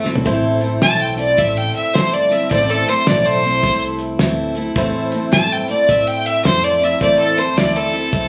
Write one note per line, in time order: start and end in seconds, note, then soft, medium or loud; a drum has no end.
0.00 0.12 E1 medium
0.00 0.26 A4 medium
0.05 0.24 A3 soft
0.05 0.25 C4 medium
0.05 0.25 E4 medium
0.05 snare soft
0.15 floor tom medium
0.25 0.81 A1 medium
0.25 0.61 A2 medium
0.25 0.61 E3 medium
0.25 0.61 A3 medium
0.25 0.61 C4 medium
0.25 2.47 E4 medium
0.25 0.61 E4 medium
0.25 2.47 A4 medium
0.25 0.60 A4 medium
0.25 2.48 C5 medium
0.25 kick loud
0.25 closed hi-hat medium
0.61 0.82 A3 soft
0.61 0.82 C4 soft
0.61 0.83 E4 medium
0.61 0.82 A4 medium
0.61 closed hi-hat medium
0.82 1.37 B1 medium
0.82 1.18 A2 medium
0.82 1.18 E3 medium
0.82 1.18 A3 medium
0.82 1.17 C4 medium
0.82 1.16 E4 medium
0.82 1.15 A4 medium
0.82 1.00 A5 loud
0.82 snare medium
0.82 closed hi-hat medium
1.01 1.19 G5 medium
1.17 1.36 A3 soft
1.17 1.37 C4 soft
1.17 1.38 E4 soft
1.17 1.38 A4 medium
1.17 1.39 D5 medium
1.17 closed hi-hat medium
1.37 1.71 A1 medium
1.37 1.94 A3 medium
1.37 1.94 C4 medium
1.37 1.95 E4 medium
1.37 1.95 A4 medium
1.37 1.59 E5 medium
1.37 kick loud
1.37 closed hi-hat medium
1.57 1.75 G5 medium
1.74 1.95 E5 medium
1.74 closed hi-hat medium
1.94 2.50 G1 medium
1.94 2.30 A2 medium
1.94 2.31 E3 medium
1.94 2.30 A3 medium
1.94 2.30 C4 medium
1.94 2.29 E4 medium
1.94 2.28 A4 medium
1.94 2.15 C5 medium
1.94 snare loud
1.94 closed hi-hat medium
2.13 2.33 D5 medium
2.29 2.50 A3 soft
2.29 2.51 C4 soft
2.29 2.51 E4 medium
2.29 2.51 A4 medium
2.29 2.50 E5 medium
2.29 closed hi-hat medium
2.50 2.84 A1 medium
2.50 2.86 A2 medium
2.50 2.87 E3 medium
2.50 2.87 A3 medium
2.50 2.87 C4 medium
2.50 4.72 E4 medium
2.50 2.86 E4 medium
2.50 4.72 A4 medium
2.50 2.86 A4 medium
2.50 4.73 C5 medium
2.50 2.71 D5 medium
2.50 kick loud
2.50 closed hi-hat medium
2.70 2.90 A4 medium
2.87 3.08 A3 soft
2.87 3.07 C4 soft
2.87 3.08 E4 soft
2.87 3.08 A4 soft
2.87 3.08 C5 medium
2.87 closed hi-hat medium
3.07 3.62 B1 medium
3.07 3.43 A2 medium
3.07 3.43 E3 medium
3.07 3.44 A3 medium
3.07 3.43 C4 medium
3.07 3.43 E4 medium
3.07 3.42 A4 medium
3.07 3.26 D5 medium
3.07 snare loud
3.07 closed hi-hat medium
3.25 3.80 C5 loud
3.43 3.63 A3 soft
3.43 3.64 C4 soft
3.43 3.65 E4 soft
3.43 3.64 A4 soft
3.43 closed hi-hat medium
3.63 4.18 C2 medium
3.63 4.20 A3 medium
3.63 4.20 C4 medium
3.63 4.20 E4 medium
3.63 4.20 A4 medium
3.63 kick loud
3.63 closed hi-hat medium
3.99 closed hi-hat medium
4.19 4.74 D2 medium
4.19 4.55 A2 medium
4.19 4.55 E3 medium
4.19 4.56 A3 medium
4.19 4.56 C4 medium
4.19 4.55 E4 medium
4.19 4.54 A4 medium
4.19 snare loud
4.19 closed hi-hat medium
4.55 4.77 A3 medium
4.55 4.77 C4 soft
4.55 4.77 E4 medium
4.55 4.76 A4 medium
4.55 closed hi-hat medium
4.76 5.30 E2 medium
4.76 5.12 A2 medium
4.76 5.12 E3 medium
4.76 5.12 A3 medium
4.76 5.12 C4 medium
4.76 6.97 E4 medium
4.76 5.13 E4 medium
4.76 6.97 A4 medium
4.76 5.12 A4 medium
4.76 6.98 C5 medium
4.76 kick loud
4.76 closed hi-hat medium
5.12 5.31 A3 soft
5.12 5.32 C4 soft
5.12 5.32 E4 medium
5.12 5.33 A4 medium
5.12 closed hi-hat medium
5.32 5.65 G2 medium
5.32 5.67 A2 medium
5.32 5.67 E3 medium
5.32 5.68 A3 medium
5.32 5.68 C4 medium
5.32 5.68 E4 medium
5.32 5.67 A4 medium
5.32 5.54 A5 loud
5.32 snare loud
5.32 closed hi-hat medium
5.52 5.69 G5 medium
5.67 5.88 A3 soft
5.67 5.89 C4 soft
5.67 5.89 E4 soft
5.67 5.89 A4 soft
5.67 5.91 D5 medium
5.67 muted upright bass stroke soft
5.67 closed hi-hat medium
5.89 6.43 A2 medium
5.89 6.44 A3 medium
5.89 6.45 C4 medium
5.89 6.45 E4 medium
5.89 6.46 A4 medium
5.89 6.09 E5 medium
5.89 kick loud
5.89 closed hi-hat medium
6.07 6.27 G5 medium
6.25 6.44 E5 loud
6.25 closed hi-hat medium
6.45 6.99 F2 medium
6.45 6.80 A2 medium
6.45 6.80 E3 medium
6.45 6.80 A3 medium
6.45 6.80 C4 medium
6.45 6.80 E4 medium
6.45 6.79 A4 medium
6.45 6.65 C5 loud
6.45 snare loud
6.45 closed hi-hat medium
6.64 6.85 D5 medium
6.80 7.00 A3 soft
6.80 7.01 C4 soft
6.80 7.01 E4 soft
6.80 7.01 A4 soft
6.80 7.01 E5 medium
6.80 closed hi-hat medium
7.01 7.55 E2 medium
7.01 7.36 A2 medium
7.01 7.36 E3 medium
7.01 7.36 A3 medium
7.01 7.37 C4 medium
7.01 8.28 E4 medium
7.01 7.36 E4 medium
7.01 8.28 A4 medium
7.01 7.34 A4 medium
7.01 8.28 C5 medium
7.01 7.18 D5 medium
7.01 kick loud
7.01 closed hi-hat medium
7.19 7.39 A4 medium
7.36 7.58 A3 soft
7.36 7.58 C4 soft
7.36 7.57 E4 soft
7.36 7.57 A4 soft
7.36 7.58 C5 medium
7.36 closed hi-hat medium
7.56 8.11 D2 medium
7.56 7.93 A2 medium
7.56 7.93 E3 medium
7.56 7.93 A3 medium
7.56 7.93 C4 medium
7.56 7.92 E4 medium
7.56 7.91 A4 medium
7.56 7.77 D5 medium
7.56 snare loud
7.56 closed hi-hat medium
7.75 8.28 A4 medium
7.92 8.11 A3 soft
7.92 8.12 C4 soft
7.92 8.13 E4 soft
7.92 8.13 A4 soft
7.92 closed hi-hat medium
8.12 8.28 C2 medium
8.12 8.28 A3 medium
8.12 8.28 C4 medium
8.12 8.28 E4 medium
8.12 8.28 A4 medium
8.12 kick loud
8.12 closed hi-hat medium